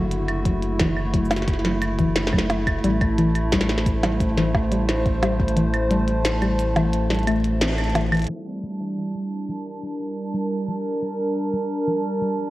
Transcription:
Already playing: F#1 D3 A3 E4 F#4
0.11 closed hi-hat
0.28 closed hi-hat, claves
0.45 F#3, kick, closed hi-hat
0.62 closed hi-hat
0.79 E3, kick, snare, closed hi-hat
0.97 claves
1.14 F#3, kick, closed hi-hat, shaker
1.25 shaker
1.31 snare, closed hi-hat, percussion blips, shaker
1.36 snare, shaker
1.42 snare
1.48 kick, snare, closed hi-hat
1.53 snare
1.59 snare
1.65 F#3, snare, closed hi-hat
1.82 closed hi-hat, claves
1.99 E3, kick, closed hi-hat
2.16 snare, closed hi-hat
2.27 snare
2.33 F#3, kick, claves
2.39 snare
2.50 closed hi-hat, percussion blips
2.67 kick, closed hi-hat, claves
2.84 A1 G3, closed hi-hat
2.93 A5
3.01 kick, closed hi-hat, claves
3.18 E3, closed hi-hat
3.35 closed hi-hat, claves
3.52 G3, kick, snare, closed hi-hat, shaker
3.61 snare
3.65 C5
3.69 snare
3.78 snare
3.86 kick, closed hi-hat, shaker
4.03 G3, snare, closed hi-hat, percussion blips
4.20 kick, closed hi-hat, shaker
4.37 E3, snare, closed hi-hat
4.55 kick, percussion blips
4.72 G3, closed hi-hat
4.89 snare, closed hi-hat
5.06 kick, closed hi-hat
5.23 G3, closed hi-hat, percussion blips
5.40 kick
5.48 closed hi-hat
5.57 E3, closed hi-hat
5.74 closed hi-hat, claves
5.91 G3, closed hi-hat
6.08 closed hi-hat
6.25 snare, closed hi-hat, shaker
6.42 G3, closed hi-hat, claves
6.59 closed hi-hat, shaker
6.76 E3, closed hi-hat, percussion blips
6.93 closed hi-hat
7.10 G3, snare, closed hi-hat
7.14 closed hi-hat
7.19 closed hi-hat
7.23 closed hi-hat
7.27 A3, closed hi-hat, claves
7.31 closed hi-hat
7.36 closed hi-hat
7.40 closed hi-hat
7.44 closed hi-hat
7.61 C4, snare, closed hi-hat
7.78 closed hi-hat, claves
7.84 closed hi-hat
7.90 closed hi-hat
7.95 E3, closed hi-hat, percussion blips
8.07 closed hi-hat
8.12 E3, closed hi-hat, claves
8.15 closed hi-hat
8.17 closed hi-hat
8.20 closed hi-hat
8.22 closed hi-hat
8.25 closed hi-hat
8.27 F3 G3, closed hi-hat
8.64 G3 D4
9.15 G3
9.47 F3 A#4
9.83 G3
10.34 G3
10.68 F3
11.02 G3
11.53 G3
11.87 F3
12.22 G3

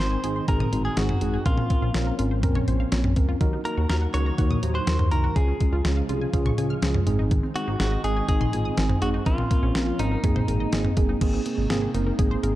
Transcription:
Already playing: D#3 G#3 C4 D#4
0.00 G#1 C4 D#4 A#4 C5
0.12 G#5
0.24 G#1 C4 D#4 G#4, closed hi-hat
0.36 C6
0.48 G#1 C4 D#4 G#4 A#4 G#5, kick, closed hi-hat
0.60 D#6, mid tom
0.72 G#1 C4 D#4 F#4 C6, closed hi-hat
0.85 G#4 G#6
0.97 G#1 G#3 C4 D#4 F#4 G#4, snare, closed hi-hat
1.09 D#4, mid tom
1.21 G#1 C4 D#4 G#4, closed hi-hat
1.34 G#4
1.46 A#1 F3 A#3 C4 C#4 F4 A#4, kick, closed hi-hat
1.58 C#4, mid tom
1.70 C4 C#4 A#4, kick, closed hi-hat
1.82 A#1 F4
1.94 A#1 C4 C#4 A#4, snare, closed hi-hat
2.07 A#4
2.19 G#1 C4 C#4 F4 A#4, closed hi-hat
2.31 C5
2.43 A#1 C4 C#4 A#4, kick, closed hi-hat, mid tom
2.55 C#5, mid tom
2.68 A#1 C4 C#4 C5, closed hi-hat
2.80 F5
2.92 A#1 A#3 C4 C#4 C#5, snare, closed hi-hat
3.04 C#4, mid tom
3.16 C#2 C4 C#4 A#4, kick, closed hi-hat
3.29 F4
3.41 D#2 D#3 F#3 D#4 F#4 A#4, kick, closed hi-hat
3.53 D#4
3.65 A#3 D#4 F#4 A#4, closed hi-hat
3.77 D#2 F#4
3.89 D#2 D#4 F#4 A#4, snare, closed hi-hat
4.02 F#5
4.14 C#2 D#4 F#4 A#4 C#5, closed hi-hat
4.26 A#5
4.38 D#2 D#4 F#4 A#4 F#5, kick, closed hi-hat
4.51 D#6, mid tom
4.63 D#2 D#4 F#4 C5 A#5, closed hi-hat
4.75 C5 F#6
4.87 D#2 F#3 D#4 F#4 A#4, snare, closed hi-hat
4.99 D#4, mid tom
5.12 C2 A#3 D#4 F#4 A#4, closed hi-hat
5.24 F#4
5.36 C#2 C#3 F3 G#3 C#4 F4 G#4, kick, closed hi-hat
5.48 C#4
5.60 G#3 C#4 F4 G#4, kick, closed hi-hat
5.73 C#2 F4
5.85 C#2 C#4 F4 G#4, snare, closed hi-hat
5.97 F5
6.09 C2 C#4 F4 G#4, closed hi-hat
6.21 G#5
6.33 C#2 C#4 F4 G#4 F5, kick, closed hi-hat
6.46 C#6, mid tom
6.58 C#2 C#4 F4 G#4 G#5, closed hi-hat
6.70 F6
6.82 C#2 F3 C#4 F4 G#4, snare, closed hi-hat
6.94 C#4, mid tom
7.07 G#1 D#3 G#3 C4 D#4 G#4, closed hi-hat
7.19 D#4
7.31 D#3, kick, closed hi-hat
7.43 C4
7.56 G#3 C4 D#4 F#4 G#4, closed hi-hat
7.68 G#1 D#4
7.80 G#1 C4 D#4 F#4 G#4, snare, closed hi-hat
7.92 D#5
8.04 G#1 C4 D#4 G#4, closed hi-hat
8.16 G#5
8.29 G#1 C4 D#4 G#4 D#5, kick, closed hi-hat
8.41 C6, mid tom
8.53 G#1 C4 D#4 F4 G#5, closed hi-hat
8.65 D#6
8.77 G#1 D#3 C4 D#4 G#4, snare, closed hi-hat
8.89 C4, mid tom
9.02 G#1 G#3 C4 D#4 F#4 G#4, closed hi-hat
9.14 D#4
9.26 A#1 F3 A#3 C4 C#4 F4 A#4, kick, closed hi-hat
9.38 C4, mid tom
9.51 A#3 C4 C#4 A#4, kick, closed hi-hat
9.63 A#1 C#4
9.75 A#1 C4 C#4 A#4, snare, closed hi-hat
9.87 F4
9.99 G#1 C4 C#4 D#4 A#4, closed hi-hat
10.12 A#4
10.24 G#1 G#3 A#3 C4 D#4 G#4, kick, closed hi-hat, mid tom
10.36 C5, mid tom
10.48 G#1 A#3 C4 G#4 A#4, closed hi-hat
10.60 D#5
10.72 G#1 G#3 A#3 C4 G#4, snare, closed hi-hat
10.85 C4, mid tom
10.97 F#1 A#3 C4 G#4, kick, closed hi-hat
11.09 D#4
11.21 G#1 C3 G#3 A#3 C4 D#4 G#4, kick, closed hi-hat, crash
11.33 C4
11.46 A#3 C4 G#4, closed hi-hat
11.58 G#1
11.70 G#1 A#3 C4 G#4, snare, closed hi-hat
11.82 G#4
11.94 F#1 A#3 C4 D#4 A#4, closed hi-hat
12.07 A#4
12.19 G#1 A#3 C4 G#4, kick, closed hi-hat
12.31 C5
12.43 G#1 A#3 C4 G#4 A#4, closed hi-hat

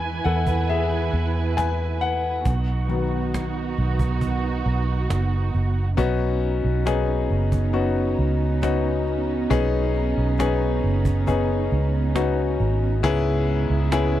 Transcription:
Already playing: E2 E3 G#3 B3 E4 B4 G#5
0.24 E2 A4 F#5, cajon slap
0.46 cajon bass
0.68 G#4 E5, cajon slap
1.13 E2, cajon slap
1.57 B4 G#5, cajon slap
2.01 B4 F#5, cajon slap
2.45 B1 B3 D#4 F#4, cajon bass
2.89 D#3 F#3 B3, cajon slap
3.34 cajon slap
3.77 B1, cajon slap
3.99 cajon bass
4.21 cajon bass, cajon slap
4.66 B1, cajon slap
5.10 F#1, cajon slap
5.54 F#1, cajon slap
5.97 B1 B3 C#4 D#4 F#4, cajon bass
6.42 cajon slap
6.64 B1
6.86 B3 C#4 D#4 G#4, cajon slap
7.30 F#1, cajon slap
7.52 cajon bass
7.73 B3 C#4 D#4 F#4, cajon slap
8.19 C#2, cajon slap
8.62 B3 C#4 D#4 F#4, cajon slap
9.07 cajon slap
9.50 B1 B3 C#4 D#4 G#4, cajon bass
9.95 cajon slap
10.17 B1
10.39 B3 C#4 D#4 G#4, cajon slap
10.83 F#1, cajon slap
11.05 cajon bass
11.27 B3 C#4 D#4 G#4, cajon bass, cajon slap
11.71 C#2, cajon slap
12.15 B3 C#4 D#4 F#4, cajon slap
12.60 G#1, cajon slap
13.03 C#2 G#2 C#3 G#3 B3 C#4 E4 G#4, cajon bass
13.47 cajon slap
13.70 C#2
13.92 B3 C#4 E4 G#4, cajon slap

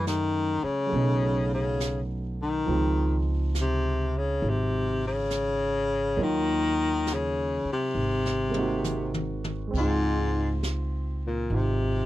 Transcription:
Already playing: F#2 F#3 G#3 A3 C#4 E5
0.07 D#3, snare, hi-hat pedal
0.63 C#3, muted upright bass stroke
0.86 F#3 A3
0.92 B1 B3 C#4, brush sweep
0.97 D#4
1.54 C#3
1.80 snare, hi-hat pedal
2.42 D#3
2.66 C#2 F3 G#3 C4 F4, brush sweep
2.72 D#4
3.55 snare, hi-hat pedal
3.61 C3
4.18 C#3
4.42 G#1, brush sweep
4.49 C3
5.07 C#3
5.30 snare, hi-hat pedal
6.17 D#2 F#3 A#3 D#4 F4 C#5, brush sweep
6.23 D#3
7.07 snare, hi-hat pedal
7.14 C#3
7.65 muted upright bass stroke
7.72 C3
7.95 G#1
8.26 snare
8.49 G#3 A#3
8.54 C4 D#4, high tom
8.59 F#4
8.84 hi-hat pedal, mid tom
9.14 mid tom
9.44 mid tom
9.67 G#3 C4
9.74 C#2 G#2 D#4, brush sweep, kick, ride
9.79 F4
10.63 snare, hi-hat pedal
11.27 A#2
11.50 G#1 D#4 F4, brush sweep
11.55 C3

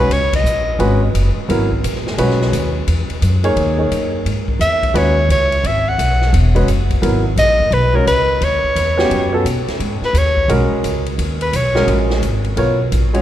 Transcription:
Already playing: B4
0.09 C#2 C#5, ride
0.33 D#5, kick, ride
0.44 A#1, hi-hat pedal
0.79 G#1 G#3 C#4 F#4 B4, ride
1.14 F#1, hi-hat pedal, ride
1.36 muted upright bass stroke
1.49 G#1 F#3 B3 E4 A#4, ride
1.72 kick
1.84 A#1, hi-hat pedal, ride
1.95 snare
2.07 snare
2.18 B1 G#3 C#4 F#4 B4, ride
2.30 snare
2.41 snare
2.52 D#2, hi-hat pedal, ride
2.87 E2, ride
3.09 muted upright bass stroke, ride
3.21 F#2, hi-hat pedal, ride
3.44 A#3 D#4 G#4 C#5, ride
3.56 D#2, ride
3.78 A#3 D#4 G#4 C#5
3.91 F#2, hi-hat pedal, ride
4.25 G#2, ride
4.48 kick
4.59 E2 E5, hi-hat pedal, ride
4.83 kick, ride
4.94 D#2 G#3 C#4 F#4 B4 C#5, ride
5.29 C#2 C#5, hi-hat pedal, ride
5.52 ride
5.64 G#1 E5, ride
5.88 F#5
5.98 B1, hi-hat pedal, ride
6.21 snare
6.33 E1, ride
6.55 G#3 C#4 F#4 B4, ride
6.67 F#1, hi-hat pedal, ride
6.90 kick, ride
7.02 G#1 F#3 B3 E4 A#4, ride
7.36 A#1 D#5, snare, hi-hat pedal, ride
7.60 kick
7.71 B1 B4, ride
7.93 G#3 C#4 F#4 A#4 C#5
8.06 C#2 B4, hi-hat pedal, ride
8.41 D#2 C#5, ride
8.64 muted upright bass stroke
8.75 E2, hi-hat pedal, ride
8.97 B3 C#4 F#4 G4, snare
9.10 F#2, ride
9.33 B3 C#4 F#4 A4
9.44 B2, hi-hat pedal, ride
9.67 muted upright bass stroke, snare, ride
9.79 G#2, ride
10.01 B4, muted upright bass stroke, snare
10.13 D#2, hi-hat pedal, ride
10.18 C#5
10.37 kick
10.48 B1 G#3 C#4 F#4 A#4, ride
10.71 muted upright bass stroke
10.83 C#2, hi-hat pedal, ride
11.06 ride
11.18 D#2, ride
11.41 B4, ride
11.53 B1 C#5, hi-hat pedal, ride
11.75 G#3 C#4 F#4 A#4, snare
11.87 A#1, ride
12.10 snare
12.22 G#1, hi-hat pedal, ride
12.44 ride
12.57 B1 B3 F4 A#4 C#5, ride
12.92 A#1, hi-hat pedal, ride
13.13 G#3 C#4 F#4 C#5, ride

